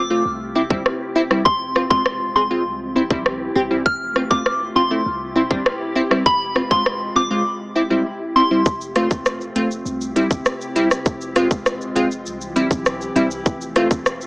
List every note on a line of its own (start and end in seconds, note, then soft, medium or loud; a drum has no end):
0.00 0.21 F1 medium
0.00 0.24 A3 medium
0.00 8.62 C4 medium
0.00 0.24 F4 medium
0.10 0.22 A3 medium
0.10 0.23 C4 medium
0.10 0.23 F4 medium
0.25 0.64 C2 loud
0.25 1.44 C3 medium
0.25 1.44 E4 medium
0.25 1.44 G4 medium
0.55 0.62 C4 medium
0.55 0.62 E4 medium
0.70 0.83 G1 medium
0.70 0.82 G3 medium
0.70 0.83 C4 medium
0.70 0.83 E4 medium
0.70 kick medium
0.86 cross-stick medium
1.15 1.22 C4 medium
1.15 1.22 E4 loud
1.30 1.43 G3 medium
1.30 1.43 C4 medium
1.30 1.43 E4 medium
1.30 cross-stick medium
1.45 1.84 F1 medium
1.45 2.65 G#3 medium
1.45 2.65 F4 medium
1.45 1.56 C6 medium
1.45 kick loud
1.75 1.82 C4 medium
1.75 1.82 F4 medium
1.75 cross-stick medium
1.90 2.29 E1 medium
1.90 2.03 G#3 medium
1.90 2.03 C4 medium
1.90 2.03 F4 medium
1.90 2.01 C6 medium
1.90 kick loud
2.06 cross-stick medium
2.36 2.67 F1 medium
2.36 2.42 C4 medium
2.36 2.42 G#4 medium
2.36 2.46 C6 medium
2.50 2.63 G#3 medium
2.50 2.63 C4 medium
2.50 2.63 F4 medium
2.66 3.04 C2 loud
2.66 3.85 E3 medium
2.66 3.85 E4 medium
2.66 3.85 G4 medium
2.96 3.02 C4 medium
2.96 3.02 E4 loud
3.10 3.49 B1 medium
3.10 3.23 G3 medium
3.10 3.23 C4 medium
3.10 3.23 E4 medium
3.10 kick loud
3.26 cross-stick medium
3.56 3.81 C2 medium
3.56 3.62 C4 loud
3.56 3.62 G4 loud
3.70 3.83 G3 medium
3.70 3.83 C4 medium
3.70 3.83 E4 medium
3.86 4.24 F1 loud
3.86 5.04 A3 medium
3.86 5.04 F4 medium
3.86 3.96 F6 loud
3.86 kick loud
4.16 4.22 C4 medium
4.16 4.22 F4 medium
4.16 cross-stick medium
4.31 4.69 E1 medium
4.31 4.43 A3 medium
4.31 4.43 C4 medium
4.31 4.43 F4 medium
4.31 4.41 D6 medium
4.31 kick loud
4.46 cross-stick medium
4.76 5.02 F1 medium
4.76 4.82 C4 medium
4.76 4.82 F4 medium
4.76 4.87 C6 medium
4.91 5.03 A3 medium
4.91 5.03 C4 medium
4.91 5.03 E4 medium
5.05 5.44 C2 loud
5.05 6.24 C3 medium
5.05 6.24 E4 medium
5.05 6.24 G4 medium
5.36 5.42 C4 medium
5.36 5.42 E4 medium
5.50 5.63 G1 medium
5.50 5.63 G3 medium
5.50 5.63 C4 medium
5.50 5.63 D4 medium
5.50 kick medium
5.66 cross-stick medium
5.95 6.02 C4 loud
5.95 6.02 E4 loud
6.11 6.23 G3 medium
6.11 6.23 C4 medium
6.11 6.23 E4 medium
6.11 cross-stick medium
6.26 6.64 F1 loud
6.26 7.45 G#3 medium
6.26 7.45 F4 medium
6.26 6.37 B5 medium
6.26 kick loud
6.55 6.62 C4 medium
6.55 6.62 F4 medium
6.55 cross-stick medium
6.70 7.09 E1 medium
6.70 6.83 G#3 medium
6.70 6.83 C4 medium
6.70 6.83 F4 medium
6.70 6.82 C6 medium
6.70 kick loud
6.86 cross-stick medium
7.16 7.42 F1 loud
7.16 7.22 C4 medium
7.16 7.22 F4 medium
7.16 7.27 D6 medium
7.30 7.43 G#3 medium
7.30 7.43 C4 medium
7.30 7.43 F4 medium
7.46 8.65 C3 medium
7.46 8.65 E4 medium
7.46 8.65 G4 medium
7.75 7.82 C4 medium
7.75 7.82 E4 loud
7.90 8.03 G3 medium
7.90 8.03 C4 medium
7.90 8.03 E4 medium
8.36 8.42 C4 medium
8.36 8.42 E4 medium
8.36 8.46 C6 medium
8.51 8.63 G3 medium
8.51 8.63 C4 medium
8.51 8.63 E4 medium
8.66 9.04 F1 loud
8.66 9.85 A3 medium
8.66 14.27 C4 medium
8.66 9.85 F4 medium
8.66 kick loud
8.66 shaker medium
8.81 shaker medium
8.96 9.08 A3 medium
8.96 9.08 C4 medium
8.96 9.08 F4 loud
8.96 cross-stick medium
8.96 closed hi-hat medium
8.96 shaker medium
9.11 9.49 E1 medium
9.11 kick loud
9.11 shaker medium
9.26 cross-stick loud
9.26 shaker medium
9.41 shaker soft
9.56 9.81 F1 medium
9.56 9.68 A3 medium
9.56 9.68 C4 medium
9.56 9.68 F4 loud
9.56 closed hi-hat medium
9.56 shaker medium
9.71 shaker medium
9.86 10.24 C2 loud
9.86 11.05 C3 medium
9.86 11.05 E4 medium
9.86 11.05 G4 medium
9.86 shaker medium
10.01 shaker medium
10.16 10.28 G3 medium
10.16 10.28 C4 medium
10.16 10.28 E4 loud
10.16 closed hi-hat medium
10.16 shaker medium
10.31 10.44 G1 medium
10.31 kick medium
10.31 shaker medium
10.46 cross-stick medium
10.46 shaker medium
10.61 shaker medium
10.76 10.88 G3 medium
10.76 10.88 C4 medium
10.76 10.88 E4 loud
10.76 closed hi-hat medium
10.76 shaker medium
10.91 cross-stick medium
10.91 shaker medium
11.06 11.44 F1 loud
11.06 12.25 G#3 medium
11.06 12.25 F4 medium
11.06 kick loud
11.06 shaker medium
11.21 shaker soft
11.36 11.48 G#3 medium
11.36 11.48 C4 medium
11.36 11.48 F4 loud
11.36 cross-stick medium
11.36 closed hi-hat medium
11.36 shaker medium
11.51 11.89 E1 loud
11.51 kick loud
11.51 shaker medium
11.66 cross-stick loud
11.66 shaker medium
11.81 shaker soft
11.95 12.27 F1 medium
11.95 12.08 G#3 medium
11.95 12.08 C4 medium
11.95 12.08 F4 loud
11.95 closed hi-hat medium
11.95 shaker medium
12.11 shaker medium
12.26 12.64 C2 loud
12.26 13.45 E3 medium
12.26 13.45 E4 medium
12.26 13.45 G4 medium
12.26 shaker medium
12.41 shaker medium
12.56 12.68 G3 medium
12.56 12.68 C4 medium
12.56 12.68 E4 loud
12.56 closed hi-hat medium
12.56 shaker medium
12.71 13.09 B1 medium
12.71 kick loud
12.71 shaker medium
12.86 cross-stick medium
12.86 shaker medium
13.01 shaker medium
13.16 13.41 C2 medium
13.16 13.28 G3 loud
13.16 13.28 C4 medium
13.16 13.28 E4 loud
13.16 closed hi-hat medium
13.16 shaker medium
13.31 shaker medium
13.46 13.84 F1 loud
13.46 14.27 A3 medium
13.46 14.27 F4 medium
13.46 kick loud
13.46 shaker medium
13.61 shaker medium
13.76 13.88 A3 medium
13.76 13.88 C4 medium
13.76 13.88 F4 loud
13.76 cross-stick medium
13.76 closed hi-hat medium
13.76 shaker medium
13.91 14.27 E1 medium
13.91 kick loud
13.91 shaker medium
14.06 cross-stick medium
14.06 shaker medium
14.21 shaker soft